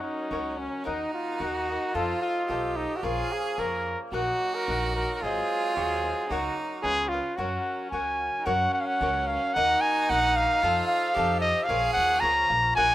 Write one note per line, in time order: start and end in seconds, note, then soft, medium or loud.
0.00 0.84 F#3 medium
0.00 0.84 C#4 medium
0.00 0.88 C#4 medium
0.00 0.59 D#4 medium
0.00 0.29 F#4 medium
0.00 0.30 A#4 medium
0.00 0.85 A#4 medium
0.00 0.32 C#5 medium
0.00 0.31 F#5 medium
0.31 0.66 C#2 medium
0.31 0.84 F#4 medium
0.31 0.84 A#4 medium
0.31 0.85 C#5 medium
0.31 0.85 F#5 medium
0.58 0.85 C#4 medium
0.84 1.04 D#2 medium
0.84 1.93 D#3 medium
0.84 1.93 A#3 medium
0.84 1.38 D#4 medium
0.84 1.11 D#4 medium
0.84 1.95 D#4 loud
0.84 1.93 F#4 medium
0.84 1.38 A#4 medium
0.84 1.39 D#5 medium
0.84 1.40 F#5 medium
1.14 1.43 F4 medium
1.40 1.75 D#2 medium
1.40 1.67 D#4 medium
1.40 1.96 F#4 loud
1.40 1.67 A#4 medium
1.40 1.67 D#5 medium
1.40 1.67 F#5 medium
1.68 1.94 A#4 soft
1.68 1.94 D#5 medium
1.68 1.94 F#5 soft
1.93 2.12 F2 medium
1.93 4.10 F3 medium
1.93 3.02 D#4 medium
1.93 2.47 F4 loud
1.93 2.47 F4 medium
1.93 2.21 F4 medium
1.93 3.02 A4 medium
1.93 2.49 A4 medium
1.93 2.49 C5 medium
1.93 2.49 D#5 medium
2.22 2.78 F4 medium
2.47 2.84 B1 medium
2.47 3.02 F4 medium
2.47 3.05 G4 medium
2.47 3.03 A4 medium
2.47 3.04 C5 medium
2.47 3.04 D#5 medium
2.76 2.98 D#4 medium
2.96 3.04 F#4 medium
3.03 3.21 A#1 medium
3.03 5.19 A#3 medium
3.03 4.11 C#4 medium
3.03 3.34 F4 medium
3.03 3.56 F4 medium
3.03 3.85 G#4 loud
3.03 3.57 A#4 medium
3.03 3.58 C#5 medium
3.03 3.58 F5 loud
3.32 3.61 G#4 medium
3.57 3.93 F2 medium
3.57 4.12 F4 soft
3.57 4.12 A#4 medium
3.57 3.99 A#4 medium
3.57 4.13 C#5 medium
3.57 4.13 F5 medium
4.12 4.30 A#1 medium
4.12 6.81 F#3 medium
4.12 4.67 D#4 medium
4.12 5.21 D#4 medium
4.12 5.21 F#4 loud
4.12 4.56 F#4 medium
4.12 4.67 A#4 medium
4.12 4.68 D#5 medium
4.12 4.69 F#5 medium
4.54 4.95 A#4 medium
4.68 5.03 A#1 loud
4.68 5.21 D#4 medium
4.68 5.22 A#4 medium
4.68 5.22 D#5 medium
4.68 5.22 F#5 medium
4.95 5.14 A#4 medium
5.14 5.25 A#4 medium
5.20 5.39 G#1 medium
5.20 6.29 G#3 medium
5.20 6.28 F4 loud
5.20 5.75 G#4 loud
5.24 6.29 C4 medium
5.24 5.75 G#4 medium
5.24 5.76 C5 medium
5.24 5.77 D#5 medium
5.76 6.11 D#2 medium
5.76 6.02 F#4 medium
5.76 6.33 G#4 medium
5.76 6.03 G#4 medium
5.76 6.02 C5 medium
5.76 6.02 D#5 medium
6.03 6.30 G#4 soft
6.03 6.29 C5 soft
6.03 6.29 D#5 soft
6.29 6.47 C#2 loud
6.29 6.82 A#3 medium
6.29 6.82 C#4 medium
6.29 6.84 D#4 loud
6.29 6.84 F#4 medium
6.29 6.57 F#4 medium
6.29 6.84 A#4 medium
6.29 6.85 C#5 medium
6.29 6.84 F#5 medium
6.82 7.19 C#2 loud
6.82 7.22 C#3 medium
6.82 7.22 B3 medium
6.82 7.36 C#4 medium
6.82 7.22 F4 medium
6.82 7.10 G#4 loud
6.82 7.10 G#4 medium
6.82 7.11 B4 medium
6.82 7.11 C#5 medium
6.82 7.11 F5 medium
7.08 7.38 F4 medium
7.13 7.38 B4 soft
7.13 7.37 C#5 soft
7.13 7.38 F5 soft
7.36 7.56 F#2 medium
7.36 8.44 F#3 medium
7.36 8.15 C#4 medium
7.36 8.45 C#4 medium
7.36 7.90 F#4 medium
7.36 7.92 F#4 medium
7.36 7.93 A#4 medium
7.36 8.46 A#4 medium
7.36 7.92 C#5 medium
7.36 7.94 F#5 medium
7.90 8.28 C#2 medium
7.90 8.46 F#4 medium
7.90 8.45 A#4 soft
7.90 8.45 C#5 medium
7.90 8.46 F#5 medium
7.90 8.47 G#5 medium
8.39 8.47 D#4 medium
8.45 8.64 F#2 loud
8.45 9.54 F#3 medium
8.45 9.55 C#4 loud
8.45 9.54 C#4 medium
8.45 9.01 F#4 medium
8.45 9.01 A#4 loud
8.45 9.54 A#4 medium
8.45 9.01 C#5 medium
8.45 8.73 F#5 medium
8.45 9.01 F#5 medium
8.73 8.82 F#5 medium
8.81 8.88 F5 medium
8.87 9.29 F#5 medium
9.01 9.36 C#2 loud
9.01 9.56 F#4 medium
9.01 9.55 A#4 medium
9.01 9.56 C#5 medium
9.01 9.56 F#5 medium
9.27 9.55 F5 loud
9.54 9.73 D#2 loud
9.54 10.61 D#3 medium
9.54 10.61 A#3 medium
9.54 10.63 D#4 loud
9.54 10.08 D#4 medium
9.54 10.61 F#4 medium
9.54 10.09 A#4 loud
9.54 10.09 D#5 loud
9.54 9.82 F#5 loud
9.54 10.10 F#5 medium
9.81 10.11 G#5 loud
10.09 10.44 A#1 loud
10.09 10.62 D#4 medium
10.09 10.63 A#4 medium
10.09 10.63 D#5 medium
10.09 10.38 F#5 loud
10.09 10.64 F#5 medium
10.36 10.87 F5 loud
10.62 10.80 F2 loud
10.62 12.75 F3 medium
10.62 11.15 D#4 loud
10.62 11.68 D#4 medium
10.62 11.16 F4 loud
10.62 11.68 A4 medium
10.62 11.16 A4 loud
10.62 11.16 C5 loud
10.62 11.16 F5 loud
10.88 11.38 F5 loud
11.14 11.51 F2 loud
11.14 11.68 D#4 medium
11.14 11.67 G4 loud
11.14 11.69 A4 medium
11.14 11.69 C5 medium
11.14 11.69 F5 medium
11.40 11.65 D#5 loud
11.63 12.48 G#4 loud
11.63 11.92 F5 loud
11.68 11.86 A#1 loud
11.68 12.75 A#3 medium
11.68 12.75 C#4 medium
11.68 12.22 F4 medium
11.68 12.22 A#4 medium
11.68 12.23 C#5 medium
11.68 12.23 F5 loud
11.93 12.20 D#2 medium
11.93 12.21 F#5 loud
12.20 12.47 C#2 medium
12.20 12.50 F4 medium
12.20 12.50 A#4 medium
12.20 12.49 C#5 medium
12.20 12.74 A#5 loud
12.24 12.48 F5 medium
12.50 12.74 A#1 loud
12.50 12.76 A#4 soft
12.50 12.77 C#5 soft
12.50 12.77 F5 medium
12.75 12.95 A#1 medium
12.75 12.95 F#3 medium
12.75 12.95 A#3 medium
12.75 12.95 D#4 medium
12.75 12.95 F#4 loud
12.75 12.95 A#4 medium
12.75 12.95 D#5 medium
12.75 12.95 F#5 loud
12.75 12.95 G#5 loud